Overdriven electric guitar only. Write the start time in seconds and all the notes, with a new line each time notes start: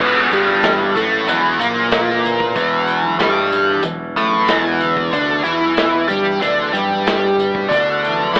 0.00 E2 E3
0.32 G2 G3
0.95 A2 A3
1.27 E2 E3
1.59 A#2 A#3
2.55 E2 E3
3.19 G2 G3
3.83 E2
4.16 A2 A3
4.48 E2 E3
5.11 D3 D4
5.43 E3 E4
6.07 G3 G4
6.40 D3 D4
6.72 G3 G4
7.68 D3 D4
8.34 E3 E4